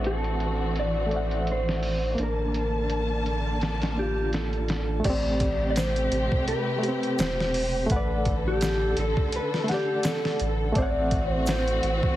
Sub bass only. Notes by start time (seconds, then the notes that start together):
Already playing: A1
2.19 A1
5.05 A1
6.11 A1
7.19 E1
7.90 A1
8.97 A1
10.40 A1
10.76 A1
11.83 A1